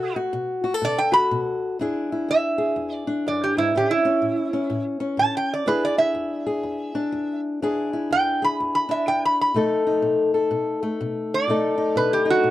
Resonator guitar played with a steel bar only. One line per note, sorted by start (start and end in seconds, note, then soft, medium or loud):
0.00 0.16 A4 loud
0.85 0.99 D5 loud
0.98 1.14 G5 loud
1.13 1.39 B5 loud
2.31 2.94 E5 loud
2.94 3.23 D5 loud
3.28 3.42 D5 medium
3.44 3.58 G4 medium
3.58 3.73 E4 medium
3.77 3.91 G4 medium
3.91 4.84 E4 medium
5.19 5.35 A5 medium
5.37 5.52 G5 medium
5.53 5.68 D5 medium
5.68 5.83 B4 medium
5.85 5.98 D5 medium
5.98 7.40 E5 medium
8.12 8.42 G5 loud
8.44 8.58 B5 medium
8.75 8.90 B5 medium
8.91 9.06 E5 medium
9.08 9.22 G5 medium
9.25 9.39 B5 medium
9.41 9.65 B5 medium
11.34 11.95 D5 medium
11.97 12.12 B4 medium
12.13 12.28 G4 medium
12.30 12.51 F#4 medium